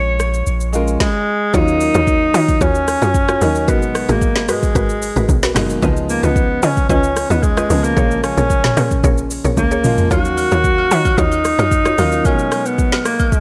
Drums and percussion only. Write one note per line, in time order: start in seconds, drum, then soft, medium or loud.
0.20 cross-stick medium
0.20 shaker medium
0.34 shaker medium
0.47 shaker medium
0.61 shaker medium
0.73 shaker medium
0.88 shaker soft
1.00 kick loud
1.00 snare medium
1.54 kick loud
1.54 shaker medium
1.68 shaker medium
1.81 open hi-hat soft
1.81 shaker medium
1.94 shaker medium
2.07 kick loud
2.07 shaker medium
2.34 open hi-hat medium
2.34 shaker medium
2.48 kick medium
2.48 shaker medium
2.61 kick loud
2.61 shaker medium
2.75 shaker medium
2.88 cross-stick medium
2.88 open hi-hat medium
2.88 shaker medium
3.02 shaker medium
3.14 kick loud
3.14 shaker medium
3.28 cross-stick loud
3.28 shaker medium
3.41 open hi-hat medium
3.41 shaker medium
3.55 shaker medium
3.68 kick loud
3.68 shaker medium
3.82 shaker medium
3.95 cross-stick loud
3.95 open hi-hat soft
3.95 shaker medium
4.09 shaker medium
4.22 kick loud
4.22 shaker medium
4.36 snare medium
4.49 cross-stick medium
4.49 open hi-hat medium
4.49 shaker loud
4.63 kick medium
4.63 shaker medium
4.75 kick loud
4.75 shaker medium
4.89 shaker medium
5.02 open hi-hat medium
5.02 shaker medium
5.16 shaker medium
5.29 kick loud
5.29 shaker medium
5.43 snare medium
5.43 shaker medium
5.56 cross-stick loud
5.56 snare medium
5.56 open hi-hat medium
5.56 shaker medium
5.70 shaker medium
5.83 kick loud
5.83 shaker medium
5.97 shaker medium
6.09 open hi-hat soft
6.09 shaker medium
6.23 shaker medium
6.36 kick loud
6.36 shaker medium
6.63 open hi-hat medium
6.63 shaker medium
6.77 kick medium
6.77 shaker medium
6.90 kick loud
6.90 shaker medium
7.04 shaker medium
7.16 cross-stick medium
7.16 open hi-hat medium
7.16 shaker medium
7.31 shaker medium
7.43 kick loud
7.43 shaker medium
7.57 cross-stick loud
7.57 shaker medium
7.70 open hi-hat medium
7.70 shaker medium
7.84 shaker medium
7.97 kick loud
7.97 shaker medium
8.11 shaker medium
8.24 cross-stick loud
8.24 open hi-hat soft
8.24 shaker medium
8.37 shaker medium
8.50 kick loud
8.50 shaker medium
8.64 snare medium
8.64 mid tom medium
8.77 cross-stick medium
8.77 open hi-hat medium
8.77 shaker medium
8.91 kick medium
8.91 shaker medium
9.04 kick loud
9.04 shaker medium
9.18 shaker medium
9.31 open hi-hat medium
9.31 shaker medium
9.45 shaker medium
9.57 kick loud
9.57 high tom medium
9.57 shaker medium
9.71 shaker medium
9.84 mid tom loud
9.84 open hi-hat medium
9.84 shaker medium
9.98 floor tom loud
9.98 shaker medium
10.11 kick loud
10.11 high agogo medium
10.11 shaker medium
10.25 shaker medium
10.37 open hi-hat soft
10.37 high agogo medium
10.37 shaker medium
10.51 shaker medium
10.64 kick loud
10.64 shaker medium
10.78 high agogo medium
10.91 open hi-hat medium
10.91 shaker loud
11.05 kick medium
11.05 high agogo medium
11.05 shaker medium
11.18 kick loud
11.18 shaker medium
11.32 high agogo medium
11.32 shaker medium
11.45 cross-stick medium
11.45 open hi-hat medium
11.45 shaker medium
11.59 high agogo medium
11.59 shaker soft
11.71 kick loud
11.71 shaker medium
11.85 cross-stick loud
11.85 shaker medium
11.98 open hi-hat medium
11.98 high agogo medium
11.98 shaker medium
12.12 shaker medium
12.25 kick loud
12.25 high agogo medium
12.25 shaker medium
12.39 shaker medium
12.52 cross-stick loud
12.52 open hi-hat soft
12.52 high agogo medium
12.52 shaker medium
12.66 shaker medium
12.78 kick loud
12.78 shaker medium
12.92 snare medium
12.92 high agogo medium
13.05 cross-stick loud
13.05 open hi-hat medium
13.05 shaker medium
13.19 kick medium
13.19 high agogo medium
13.19 shaker medium
13.32 kick loud
13.32 shaker medium